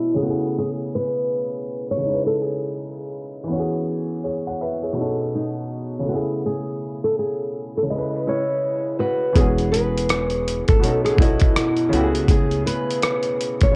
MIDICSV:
0, 0, Header, 1, 5, 480
1, 0, Start_track
1, 0, Key_signature, 4, "major"
1, 0, Tempo, 731707
1, 380, Time_signature, 4, 2, 24, 8
1, 9025, End_track
2, 0, Start_track
2, 0, Title_t, "Nylon-string guitar"
2, 0, Program_c, 0, 24
2, 0, Note_on_c, 0, 64, 82
2, 103, Note_off_c, 0, 64, 0
2, 106, Note_on_c, 0, 68, 58
2, 141, Note_off_c, 0, 68, 0
2, 143, Note_on_c, 0, 66, 72
2, 365, Note_off_c, 0, 66, 0
2, 382, Note_on_c, 0, 68, 93
2, 447, Note_off_c, 0, 68, 0
2, 623, Note_on_c, 0, 71, 90
2, 1250, Note_off_c, 0, 71, 0
2, 1253, Note_on_c, 0, 73, 92
2, 1482, Note_off_c, 0, 73, 0
2, 1485, Note_on_c, 0, 69, 79
2, 1584, Note_off_c, 0, 69, 0
2, 1584, Note_on_c, 0, 68, 77
2, 2062, Note_off_c, 0, 68, 0
2, 3511, Note_on_c, 0, 63, 69
2, 3989, Note_off_c, 0, 63, 0
2, 3992, Note_on_c, 0, 66, 76
2, 4055, Note_off_c, 0, 66, 0
2, 4237, Note_on_c, 0, 68, 91
2, 4616, Note_off_c, 0, 68, 0
2, 4618, Note_on_c, 0, 69, 79
2, 4709, Note_off_c, 0, 69, 0
2, 4715, Note_on_c, 0, 68, 82
2, 5097, Note_off_c, 0, 68, 0
2, 5100, Note_on_c, 0, 69, 80
2, 5132, Note_off_c, 0, 69, 0
2, 5190, Note_on_c, 0, 71, 89
2, 5426, Note_on_c, 0, 64, 71
2, 5432, Note_off_c, 0, 71, 0
2, 5435, Note_on_c, 0, 73, 94
2, 5898, Note_on_c, 0, 66, 69
2, 5901, Note_off_c, 0, 73, 0
2, 5903, Note_on_c, 0, 71, 81
2, 5917, Note_off_c, 0, 64, 0
2, 6137, Note_off_c, 0, 66, 0
2, 6140, Note_on_c, 0, 68, 89
2, 6204, Note_off_c, 0, 68, 0
2, 6355, Note_off_c, 0, 71, 0
2, 6375, Note_on_c, 0, 71, 94
2, 6977, Note_off_c, 0, 71, 0
2, 7009, Note_on_c, 0, 69, 87
2, 7243, Note_off_c, 0, 69, 0
2, 7246, Note_on_c, 0, 68, 87
2, 7343, Note_off_c, 0, 68, 0
2, 7344, Note_on_c, 0, 64, 96
2, 7828, Note_off_c, 0, 64, 0
2, 7830, Note_on_c, 0, 66, 84
2, 8072, Note_off_c, 0, 66, 0
2, 8072, Note_on_c, 0, 68, 95
2, 8305, Note_off_c, 0, 68, 0
2, 8307, Note_on_c, 0, 71, 97
2, 8940, Note_off_c, 0, 71, 0
2, 8942, Note_on_c, 0, 73, 102
2, 9025, Note_off_c, 0, 73, 0
2, 9025, End_track
3, 0, Start_track
3, 0, Title_t, "Upright piano"
3, 0, Program_c, 1, 0
3, 0, Control_c, 1, 64, 127
3, 0, Note_on_c, 1, 47, 60
3, 0, Note_on_c, 1, 59, 54
3, 0, Note_on_c, 1, 61, 51
3, 0, Note_on_c, 1, 69, 66
3, 0, Note_on_c, 1, 75, 51
3, 93, Note_on_c, 1, 49, 67
3, 120, Note_on_c, 1, 57, 54
3, 130, Note_off_c, 1, 47, 0
3, 136, Note_off_c, 1, 59, 0
3, 144, Note_off_c, 1, 61, 0
3, 146, Note_on_c, 1, 59, 53
3, 149, Control_c, 1, 64, 0
3, 150, Note_off_c, 1, 75, 0
3, 157, Note_off_c, 1, 69, 0
3, 171, Note_on_c, 1, 64, 51
3, 198, Note_on_c, 1, 68, 68
3, 260, Control_c, 1, 64, 127
3, 1284, Note_off_c, 1, 49, 0
3, 1294, Note_on_c, 1, 49, 58
3, 1306, Note_off_c, 1, 57, 0
3, 1319, Note_off_c, 1, 59, 0
3, 1319, Note_on_c, 1, 56, 55
3, 1332, Note_off_c, 1, 64, 0
3, 1345, Note_off_c, 1, 68, 0
3, 1347, Control_c, 1, 64, 0
3, 1347, Note_on_c, 1, 63, 53
3, 1372, Note_on_c, 1, 64, 49
3, 1398, Note_on_c, 1, 71, 58
3, 1449, Control_c, 1, 64, 127
3, 2255, Note_on_c, 1, 52, 72
3, 2257, Note_off_c, 1, 49, 0
3, 2270, Note_off_c, 1, 56, 0
3, 2282, Note_on_c, 1, 59, 65
3, 2284, Note_off_c, 1, 63, 0
3, 2297, Note_off_c, 1, 64, 0
3, 2307, Control_c, 1, 64, 0
3, 2307, Note_on_c, 1, 61, 65
3, 2310, Note_off_c, 1, 71, 0
3, 2333, Note_on_c, 1, 66, 58
3, 2359, Note_on_c, 1, 68, 73
3, 2423, Control_c, 1, 64, 127
3, 2777, Note_off_c, 1, 68, 0
3, 2781, Note_on_c, 1, 73, 55
3, 2787, Note_on_c, 1, 68, 46
3, 2919, Note_off_c, 1, 73, 0
3, 2922, Note_off_c, 1, 68, 0
3, 2933, Note_on_c, 1, 78, 63
3, 2938, Note_on_c, 1, 73, 50
3, 3019, Note_off_c, 1, 78, 0
3, 3022, Note_off_c, 1, 73, 0
3, 3024, Note_on_c, 1, 76, 67
3, 3029, Note_on_c, 1, 71, 55
3, 3161, Note_off_c, 1, 76, 0
3, 3163, Note_off_c, 1, 71, 0
3, 3167, Note_on_c, 1, 73, 49
3, 3171, Note_on_c, 1, 68, 47
3, 3218, Note_off_c, 1, 52, 0
3, 3231, Note_off_c, 1, 59, 0
3, 3233, Note_on_c, 1, 47, 74
3, 3244, Note_off_c, 1, 61, 0
3, 3247, Note_on_c, 1, 59, 65
3, 3257, Note_off_c, 1, 66, 0
3, 3262, Note_on_c, 1, 61, 62
3, 3270, Control_c, 1, 64, 0
3, 3274, Note_on_c, 1, 63, 63
3, 3287, Note_on_c, 1, 69, 74
3, 3371, Control_c, 1, 64, 127
3, 3394, Note_off_c, 1, 73, 0
3, 3396, Note_off_c, 1, 68, 0
3, 3930, Note_on_c, 1, 49, 61
3, 3956, Note_on_c, 1, 57, 53
3, 3966, Note_off_c, 1, 47, 0
3, 3972, Note_off_c, 1, 59, 0
3, 3981, Note_off_c, 1, 61, 0
3, 3982, Note_on_c, 1, 59, 52
3, 3987, Note_off_c, 1, 63, 0
3, 3990, Control_c, 1, 64, 0
3, 3994, Note_off_c, 1, 69, 0
3, 4011, Note_on_c, 1, 64, 57
3, 4036, Note_on_c, 1, 68, 66
3, 4110, Control_c, 1, 64, 127
3, 5124, Note_off_c, 1, 49, 0
3, 5134, Note_on_c, 1, 49, 56
3, 5144, Note_off_c, 1, 57, 0
3, 5157, Note_off_c, 1, 59, 0
3, 5158, Note_on_c, 1, 56, 53
3, 5172, Note_off_c, 1, 64, 0
3, 5184, Note_off_c, 1, 68, 0
3, 5185, Note_on_c, 1, 75, 56
3, 5187, Control_c, 1, 64, 0
3, 5210, Note_on_c, 1, 64, 49
3, 5236, Note_on_c, 1, 71, 65
3, 5321, Control_c, 1, 64, 127
3, 6097, Note_off_c, 1, 49, 0
3, 6110, Note_off_c, 1, 56, 0
3, 6118, Note_on_c, 1, 52, 72
3, 6123, Note_off_c, 1, 75, 0
3, 6131, Note_on_c, 1, 59, 68
3, 6136, Note_off_c, 1, 64, 0
3, 6144, Note_on_c, 1, 61, 69
3, 6149, Note_off_c, 1, 71, 0
3, 6149, Control_c, 1, 64, 0
3, 6156, Note_on_c, 1, 66, 65
3, 6169, Note_on_c, 1, 68, 82
3, 6265, Control_c, 1, 64, 127
3, 6979, Note_off_c, 1, 52, 0
3, 6986, Note_off_c, 1, 59, 0
3, 6993, Note_off_c, 1, 61, 0
3, 6998, Note_off_c, 1, 66, 0
3, 7005, Note_off_c, 1, 68, 0
3, 7082, Note_on_c, 1, 47, 79
3, 7094, Note_on_c, 1, 59, 68
3, 7107, Note_on_c, 1, 61, 72
3, 7109, Control_c, 1, 64, 0
3, 7119, Note_on_c, 1, 63, 71
3, 7134, Note_on_c, 1, 69, 80
3, 7241, Control_c, 1, 64, 127
3, 7305, Note_off_c, 1, 47, 0
3, 7311, Note_off_c, 1, 59, 0
3, 7317, Note_off_c, 1, 61, 0
3, 7321, Note_on_c, 1, 47, 71
3, 7323, Note_off_c, 1, 63, 0
3, 7331, Note_off_c, 1, 69, 0
3, 7336, Note_on_c, 1, 59, 67
3, 7350, Note_on_c, 1, 61, 68
3, 7361, Note_on_c, 1, 75, 67
3, 7376, Note_on_c, 1, 69, 75
3, 7758, Note_off_c, 1, 47, 0
3, 7766, Note_off_c, 1, 59, 0
3, 7773, Note_off_c, 1, 61, 0
3, 7779, Note_off_c, 1, 75, 0
3, 7786, Note_off_c, 1, 69, 0
3, 7800, Note_on_c, 1, 49, 86
3, 7815, Note_on_c, 1, 57, 69
3, 7827, Note_on_c, 1, 59, 72
3, 7828, Control_c, 1, 64, 0
3, 7841, Note_on_c, 1, 64, 81
3, 7853, Note_on_c, 1, 67, 68
3, 7888, Note_off_c, 1, 67, 0
3, 7896, Note_on_c, 1, 68, 89
3, 7931, Control_c, 1, 64, 127
3, 8661, Note_off_c, 1, 49, 0
3, 8668, Note_off_c, 1, 57, 0
3, 8674, Note_off_c, 1, 59, 0
3, 8681, Note_off_c, 1, 64, 0
3, 8709, Note_off_c, 1, 68, 0
3, 8997, Note_on_c, 1, 49, 79
3, 9025, Note_off_c, 1, 49, 0
3, 9025, End_track
4, 0, Start_track
4, 0, Title_t, "Upright bass"
4, 0, Program_c, 2, 32
4, 6140, Note_on_c, 2, 28, 104
4, 6980, Note_off_c, 2, 28, 0
4, 7012, Note_on_c, 2, 32, 80
4, 7096, Note_off_c, 2, 32, 0
4, 7103, Note_on_c, 2, 35, 93
4, 7323, Note_off_c, 2, 35, 0
4, 7337, Note_on_c, 2, 35, 96
4, 7560, Note_off_c, 2, 35, 0
4, 7821, Note_on_c, 2, 37, 87
4, 8274, Note_off_c, 2, 37, 0
4, 8933, Note_on_c, 2, 35, 77
4, 9016, Note_off_c, 2, 35, 0
4, 9025, End_track
5, 0, Start_track
5, 0, Title_t, "Drums"
5, 6137, Note_on_c, 9, 36, 101
5, 6139, Note_on_c, 9, 42, 78
5, 6203, Note_off_c, 9, 36, 0
5, 6205, Note_off_c, 9, 42, 0
5, 6287, Note_on_c, 9, 42, 31
5, 6353, Note_off_c, 9, 42, 0
5, 6388, Note_on_c, 9, 42, 68
5, 6454, Note_off_c, 9, 42, 0
5, 6544, Note_on_c, 9, 42, 51
5, 6609, Note_off_c, 9, 42, 0
5, 6621, Note_on_c, 9, 42, 75
5, 6627, Note_on_c, 9, 37, 91
5, 6687, Note_off_c, 9, 42, 0
5, 6693, Note_off_c, 9, 37, 0
5, 6756, Note_on_c, 9, 42, 34
5, 6822, Note_off_c, 9, 42, 0
5, 6874, Note_on_c, 9, 42, 66
5, 6939, Note_off_c, 9, 42, 0
5, 7005, Note_on_c, 9, 42, 42
5, 7010, Note_on_c, 9, 36, 96
5, 7071, Note_off_c, 9, 42, 0
5, 7076, Note_off_c, 9, 36, 0
5, 7108, Note_on_c, 9, 42, 86
5, 7174, Note_off_c, 9, 42, 0
5, 7254, Note_on_c, 9, 42, 35
5, 7255, Note_on_c, 9, 37, 36
5, 7320, Note_off_c, 9, 42, 0
5, 7321, Note_off_c, 9, 37, 0
5, 7337, Note_on_c, 9, 36, 83
5, 7360, Note_on_c, 9, 42, 68
5, 7402, Note_off_c, 9, 36, 0
5, 7426, Note_off_c, 9, 42, 0
5, 7476, Note_on_c, 9, 42, 47
5, 7489, Note_on_c, 9, 36, 88
5, 7542, Note_off_c, 9, 42, 0
5, 7554, Note_off_c, 9, 36, 0
5, 7586, Note_on_c, 9, 37, 108
5, 7589, Note_on_c, 9, 42, 88
5, 7651, Note_off_c, 9, 37, 0
5, 7655, Note_off_c, 9, 42, 0
5, 7718, Note_on_c, 9, 42, 34
5, 7784, Note_off_c, 9, 42, 0
5, 7826, Note_on_c, 9, 42, 59
5, 7892, Note_off_c, 9, 42, 0
5, 7970, Note_on_c, 9, 42, 49
5, 8036, Note_off_c, 9, 42, 0
5, 8058, Note_on_c, 9, 36, 106
5, 8061, Note_on_c, 9, 42, 83
5, 8124, Note_off_c, 9, 36, 0
5, 8126, Note_off_c, 9, 42, 0
5, 8208, Note_on_c, 9, 42, 32
5, 8274, Note_off_c, 9, 42, 0
5, 8313, Note_on_c, 9, 42, 70
5, 8378, Note_off_c, 9, 42, 0
5, 8466, Note_on_c, 9, 42, 50
5, 8532, Note_off_c, 9, 42, 0
5, 8544, Note_on_c, 9, 42, 77
5, 8550, Note_on_c, 9, 37, 99
5, 8610, Note_off_c, 9, 42, 0
5, 8616, Note_off_c, 9, 37, 0
5, 8677, Note_on_c, 9, 42, 38
5, 8743, Note_off_c, 9, 42, 0
5, 8795, Note_on_c, 9, 42, 63
5, 8861, Note_off_c, 9, 42, 0
5, 8926, Note_on_c, 9, 42, 43
5, 8932, Note_on_c, 9, 36, 95
5, 8991, Note_off_c, 9, 42, 0
5, 8997, Note_off_c, 9, 36, 0
5, 9025, End_track
0, 0, End_of_file